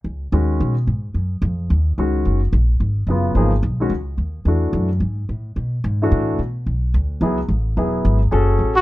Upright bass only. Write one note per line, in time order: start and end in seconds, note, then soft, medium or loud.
0.04 0.31 C#2 medium
0.32 0.59 D#2 medium
0.60 0.87 B2 medium
0.87 1.14 G#2 medium
1.14 1.41 F#2 medium
1.42 1.69 F2 medium
1.70 1.97 D#2 medium
1.98 2.25 C#2 medium
2.25 2.52 F#1 medium
2.53 2.80 A#1 medium
2.80 3.06 G#1 medium
3.07 3.34 F#1 medium
3.35 3.62 G#1 medium
3.63 3.89 B1 medium
3.90 4.17 C#2 medium
4.18 4.45 D#2 medium
4.45 4.72 E2 medium
4.73 5.00 F#2 medium
5.00 5.28 G#2 medium
5.29 5.56 A2 medium
5.56 5.83 B2 medium
5.84 6.11 G#2 medium
6.12 6.38 A2 medium
6.39 6.66 B2 medium
6.66 6.93 B1 medium
6.94 7.20 D2 medium
7.21 7.48 C#2 medium
7.48 7.76 A1 medium
7.77 8.04 E1 medium
8.05 8.31 G#1 medium
8.32 8.58 F#1 medium
8.59 8.81 A1 medium